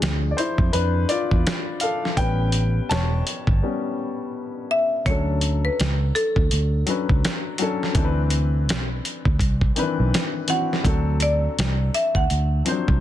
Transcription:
Already playing: F3 D4 G#4
0.02 D2, snare, closed hi-hat
0.31 D5
0.37 E4 C5, closed hi-hat
0.58 F2, kick
0.73 F2 D4 B4, closed hi-hat
1.09 F4 D5, closed hi-hat
1.31 E2, kick
1.47 snare, closed hi-hat
1.80 A4 F5, closed hi-hat
2.05 snare
2.17 A1 G3 B3 C#4 B4 G5, kick, closed hi-hat
2.52 closed hi-hat
2.89 E1 C#5 A5, snare, closed hi-hat
3.27 closed hi-hat
3.47 G1, kick
3.63 G3 B3 C#4
4.71 E5
5.06 D2 F#3 C#4 D4 A4 C#5, kick, closed hi-hat
5.41 closed hi-hat
5.65 B4
5.80 C#2, snare, closed hi-hat
6.15 A4, closed hi-hat
6.36 D2, kick
6.51 D2, closed hi-hat
6.86 F#3 C#4 D4 B4, closed hi-hat
7.09 C#2, kick
7.25 snare, closed hi-hat
7.58 F#3 C#4 D4, closed hi-hat
7.62 A4
7.83 snare
7.95 D2 E3 C4 D4 A4, kick, closed hi-hat
8.04 B4
8.30 closed hi-hat
8.69 B1, snare, closed hi-hat
9.05 closed hi-hat
9.25 D2, kick
9.39 C2, kick, closed hi-hat
9.61 kick
9.76 D#3 C4 D4 B4, closed hi-hat
9.82 E3
9.99 B1
10.14 snare, closed hi-hat
10.48 E3 C4 D4 F#4 F#5, closed hi-hat
10.73 snare
10.83 D2 F#3 C4 D4 A4, kick, closed hi-hat
11.20 D5, closed hi-hat
11.59 C2, snare, closed hi-hat
11.94 E5, closed hi-hat
12.15 D2 F#5, kick
12.30 D2, closed hi-hat
12.65 F3 C4 D4 C5, closed hi-hat
12.71 F#3
12.88 C2, kick

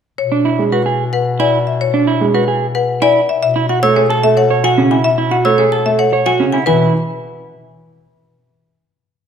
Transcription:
0.18 B2 C#5
0.32 D4
0.45 E4
0.59 G#3
0.72 F#4 B4
0.86 G#4
1.13 B4 F#5
1.40 E4 D5 G#5
1.67 E5
1.81 C#5
1.94 D4
2.07 E4
2.21 G#3
2.34 F#4 B4
2.48 G#4
2.75 B4 F#5
3.02 E4 D5 G#5
3.29 E5
3.42 B2 E5
3.56 E4
3.69 F#4 F#5
3.83 A3 C#5 E6
3.96 G#4 C#5
4.10 A4 A5
4.24 A3 E5
4.37 C#5 F#5
4.51 C#5
4.64 F#4 F#5 G#5
4.78 C#3 C#4
4.91 E4 G#5
5.04 E5
5.18 E4
5.31 F#4 F#5
5.45 A3 C#5 E6
5.58 G#4 C#5
5.72 A4 A5
5.86 A3 E5
5.99 C#5 F#5
6.13 C#5
6.26 F#4 F#5 G#5
6.40 C#3 C#4
6.52 E4 G#5
6.66 B2 E3 E4 B4 G#5

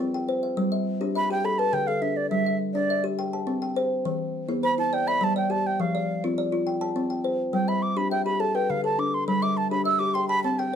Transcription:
Already playing: F5 G5
0.00 C4
0.14 G5
0.29 C5
0.43 F5
0.57 G3
0.72 E5
1.01 D4 G4
1.15 E5 B5
1.30 G4 G5
1.44 A4 B5
1.58 B4 A5
1.73 D3 G5
1.87 A4 F5
2.02 D4 E5
2.17 D5
2.30 G3 E5
2.46 E5
2.73 D4 D5
2.90 E5
3.04 G4
3.19 G5
3.33 A5
3.47 C4
3.62 G5
3.76 C5
4.05 E3
4.49 B3 E4
4.63 C5 B5
4.78 E4 A5
4.93 D5 G5
5.07 E5 B5
5.21 G3 A5
5.36 D5 G5
5.50 G4 A5
5.67 G5
5.80 F3 F5
5.95 D5
6.24 C4 F4
6.38 D5
6.52 F4
6.67 G5
6.81 A5
6.96 C4
7.10 G5
7.24 C5
7.53 G3 G5
7.68 E5 B5
7.82 D6
7.97 D4 G4 B5
8.11 E5 G5
8.25 G4 B5
8.40 A4 A5
8.55 B4 G5
8.70 D3 F5
8.84 A4 A5
8.99 D4 D6
9.14 C6
9.27 G3 B5
9.42 E5 D6
9.57 A5
9.71 D4 G4 B5
9.85 E5 E6
9.99 G4 D6
10.14 G5 C6
10.28 A5 B5
10.44 C4 A5
10.59 G5

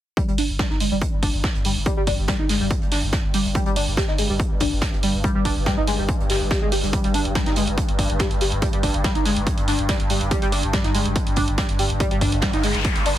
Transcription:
0.17 G2 G3, kick, closed hi-hat
0.28 G1 G3, closed hi-hat
0.38 G1 D4, closed hi-hat, open hi-hat
0.49 G1
0.59 G3, kick, snare, closed hi-hat
0.70 G1 D#4, snare
0.80 G1 G#3, closed hi-hat, open hi-hat
0.91 G1 G3
1.02 kick, closed hi-hat
1.12 G1
1.23 G1 D4, kick, closed hi-hat, open hi-hat
1.34 G1
1.43 kick, snare, closed hi-hat
1.55 G1, closed hi-hat
1.65 G1 G3, closed hi-hat, open hi-hat
1.76 G1
1.86 G3, kick, closed hi-hat
1.97 G1 G3
2.07 G1 D4, kick, closed hi-hat, open hi-hat
2.18 G1
2.28 G3, kick, snare, closed hi-hat
2.39 G1 D#4
2.49 G1 G#3, snare, closed hi-hat, open hi-hat
2.60 G1 G3
2.70 kick, closed hi-hat
2.81 G1, closed hi-hat
2.92 G1 D4, snare, closed hi-hat, open hi-hat
3.03 G1
3.13 kick, snare, closed hi-hat
3.24 G1
3.34 G1 G3, closed hi-hat, open hi-hat
3.45 G1, closed hi-hat
3.55 G3, kick, closed hi-hat
3.66 G1 G3, closed hi-hat
3.76 G1 D4, closed hi-hat, open hi-hat
3.87 G1
3.97 G3, kick, snare, closed hi-hat
4.08 G1 D#4, snare
4.18 G1 G#3, closed hi-hat, open hi-hat
4.29 G1 G3
4.40 kick, closed hi-hat
4.51 G1
4.60 G1 D4, kick, closed hi-hat, open hi-hat
4.72 G1
4.81 kick, snare, closed hi-hat
4.93 G1, closed hi-hat
5.03 G1 G3, closed hi-hat, open hi-hat
5.14 G1
5.24 G3, kick, closed hi-hat
5.35 G1 G3
5.45 G1 D4, kick, closed hi-hat, open hi-hat
5.56 G1
5.66 G3, kick, snare, closed hi-hat
5.77 G1 D#4
5.87 G1 G#3, snare, closed hi-hat, open hi-hat
5.98 G1 G3
6.09 kick, closed hi-hat
6.20 G1, closed hi-hat
6.30 G1 G3, snare, closed hi-hat, open hi-hat
6.41 G1
6.51 G3, kick, snare, closed hi-hat
6.62 G1 G#3
6.72 G1 G4, closed hi-hat, open hi-hat
6.83 G1 G3, closed hi-hat
6.93 G3, kick, closed hi-hat
7.04 G1 G3, closed hi-hat
7.14 G1 D4, closed hi-hat, open hi-hat
7.25 G1, closed hi-hat
7.35 G3, kick, snare, closed hi-hat
7.46 G1 D#4, snare, closed hi-hat
7.56 G1 G#3, closed hi-hat, open hi-hat
7.67 G1, closed hi-hat
7.78 kick, closed hi-hat
7.89 G1, closed hi-hat
7.99 G1 D4, kick, closed hi-hat, open hi-hat
8.10 G1, closed hi-hat
8.19 G3, kick, snare, closed hi-hat
8.31 G1, closed hi-hat
8.41 G1 G3, closed hi-hat, open hi-hat
8.52 G1, closed hi-hat
8.62 G3, kick, closed hi-hat
8.73 G1 G3, closed hi-hat
8.83 G1 D4, kick, closed hi-hat, open hi-hat
8.94 G1, closed hi-hat
9.04 G3, kick, snare, closed hi-hat
9.15 G1 D#4, closed hi-hat
9.25 G1 G#3, snare, closed hi-hat, open hi-hat
9.36 G1, closed hi-hat
9.47 kick, closed hi-hat
9.57 G1, closed hi-hat
9.68 G1 D4, snare, closed hi-hat, open hi-hat
9.79 G1, closed hi-hat
9.89 G3, kick, snare, closed hi-hat
10.00 G1, closed hi-hat
10.10 G1 G3, closed hi-hat, open hi-hat
10.21 G1, closed hi-hat
10.31 G3, kick, closed hi-hat
10.42 G1 G3, closed hi-hat
10.52 G1 D4, closed hi-hat, open hi-hat
10.63 G1, closed hi-hat
10.73 G3, kick, snare, closed hi-hat
10.84 G1 D#4, snare, closed hi-hat
10.94 G1 G#3, closed hi-hat, open hi-hat
11.05 G1, closed hi-hat
11.16 kick, closed hi-hat
11.27 G1, closed hi-hat
11.36 G1 D4, kick, closed hi-hat, open hi-hat
11.48 G1, closed hi-hat
11.58 G3, kick, snare, closed hi-hat
11.69 G1, closed hi-hat
11.79 G1 G3, closed hi-hat, open hi-hat
11.90 G1, closed hi-hat
12.00 G3, kick, closed hi-hat, noise sweep
12.11 G1 G3, closed hi-hat
12.21 G1 D4, kick, closed hi-hat, open hi-hat
12.32 G1, closed hi-hat
12.41 G3, kick, snare, closed hi-hat
12.53 G1 D#4, closed hi-hat
12.63 G1 G#3, closed hi-hat, open hi-hat
12.75 G1, closed hi-hat
12.85 kick, closed hi-hat
12.96 G1, closed hi-hat
13.05 G1 D4, closed hi-hat, open hi-hat

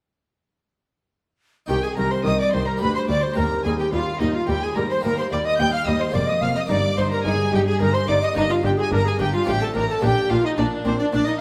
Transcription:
1.66 C2 D#3 D#4 G4 G5
1.83 G#4 G#5
1.97 C2 D#3 A#4 A#5
2.11 C5 C6
2.25 C2 D#3 D#5 D#6
2.40 D5 D6
2.53 C2 D#3 C5 C6
2.67 A#4 A#5
2.77 D2 G3 D4 G4 B5
2.82 D2 B4
2.94 C5 C6
3.07 D2 G3 D5 D6
3.22 C5 C6
3.34 D#2 G3 C4 G4 A#4 A#5
3.38 D#2
3.64 D#2 G3 G#4 G#5
3.79 G4 G5
3.92 D#2 G3 F4 F5
4.20 D#2 G3 D#4 D#5
4.33 F4 F5
4.47 D#2 G3 G4 G5
4.61 G#4 G#5
4.75 D#2 G3 A#4 A#5
4.89 C5 C6
5.01 D#2 G3 A#3 G4 A#4 A#5
5.17 C5 C6
5.31 D#2 G3 D5 D6
5.45 D#5 D#6
5.59 D#2 G3 G5 G6
5.73 F5 F6
5.86 D#2 G3 D#5 D#6
6.00 C5 C6
6.09 G#3 A#3 F4
6.14 F1 F2 A#3 D5 D6
6.27 D#5 D#6
6.41 F1 F2 A#3 F5 F6
6.56 D#5 D#6
6.66 G1 G2 A#3 D#4 D5 D6
6.97 G1 G2 D#4 C5 C6
7.11 A#4 A#5
7.25 G1 G2 D#4 G#4 G#5
7.53 G1 G2 D#4 G4 G5
7.66 G#4 G#5
7.80 G1 G2 D#4 A#4 A#5
7.93 C5 C6
8.08 G1 G2 D#4 D5 D6
8.22 D#5 D#6
8.34 G1 G2 A#3 D4 D#4 D#5
8.49 F4 F5
8.63 G1 G2 D4 G4 G5
8.77 G#4 G#5
8.91 G1 G2 D4 A#4 A#5
9.05 G#4 G#5
9.18 G1 G2 D4 G4 G5
9.33 F4 F5
9.44 A2 C4 D4 G4
9.48 A1 G4 G5
9.61 A4 A5
9.75 A1 A2 D4 A#4 A#5
9.89 A4 A5
10.00 A#1 A#2 A#3 D4 G4 G5
10.04 G4
10.30 A#1 A#2 D4 F4 F5
10.44 D#4 D#5
10.57 A#1 A#2 D4 D5
10.85 A#1 A#2 C4 D4 C5
10.99 D4 D5
11.12 A#1 A#2 D4 D5
11.26 D#4 D#5

